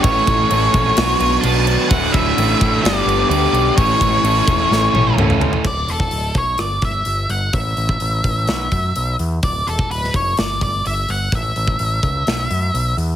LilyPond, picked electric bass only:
\new Staff \with { instrumentName = "Picked electric bass" } { \clef bass \time 4/4 \key d \major \tempo 4 = 127 a,,8 a,,8 a,,8 bes,,8 b,,8 b,,8 b,,4 | d,,8 d,,8 a,,8 a,,8 g,,8 g,,8 d,8 b,,8 | a,,8 a,,8 a,,8 e,,8 a,,8 a,,8 cis,4 | d,,8 e,,8 d,,8 b,,8 g,,8 g,,8 g,,8 g,,8 |
a,,8 a,,8 a,,8 a,,8 b,,8 fis,8 b,,8 e,8 | d,,8 e,,8 d,,8 fis,,8 g,,8 g,,8 g,,8 g,,8 | a,,8 a,,8 a,,8 cis,8 b,,8 fis,8 b,,8 e,8 | }